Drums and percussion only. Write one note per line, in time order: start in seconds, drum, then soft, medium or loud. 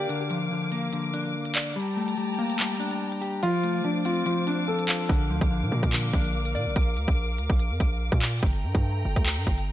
0.09 closed hi-hat medium
0.30 closed hi-hat medium
0.72 closed hi-hat medium
0.93 closed hi-hat medium
1.14 closed hi-hat medium
1.45 closed hi-hat medium
1.55 clap loud
1.66 closed hi-hat soft
1.73 closed hi-hat medium
1.80 closed hi-hat medium
2.08 closed hi-hat medium
2.50 closed hi-hat medium
2.59 clap loud
2.80 closed hi-hat medium
2.91 closed hi-hat medium
3.12 closed hi-hat medium
3.22 closed hi-hat medium
3.43 closed hi-hat medium
3.63 closed hi-hat medium
4.05 closed hi-hat medium
4.26 closed hi-hat medium
4.47 closed hi-hat medium
4.79 closed hi-hat medium
4.89 clap loud
4.89 open hi-hat medium
5.00 closed hi-hat medium
5.06 kick loud
5.06 closed hi-hat medium
5.13 closed hi-hat medium
5.41 kick loud
5.41 closed hi-hat medium
5.83 kick loud
5.83 closed hi-hat medium
5.93 clap loud
6.13 kick medium
6.13 closed hi-hat medium
6.25 closed hi-hat medium
6.45 closed hi-hat medium
6.55 closed hi-hat medium
6.76 kick loud
6.76 closed hi-hat medium
6.97 closed hi-hat medium
7.08 kick loud
7.38 closed hi-hat medium
7.50 kick loud
7.59 closed hi-hat medium
7.80 kick medium
7.80 closed hi-hat medium
8.12 kick loud
8.12 closed hi-hat medium
8.22 clap loud
8.33 closed hi-hat soft
8.39 kick loud
8.39 closed hi-hat medium
8.46 closed hi-hat medium
8.75 kick loud
8.75 closed hi-hat medium
9.16 kick loud
9.16 closed hi-hat medium
9.26 clap loud
9.47 kick medium
9.47 closed hi-hat medium
9.58 closed hi-hat medium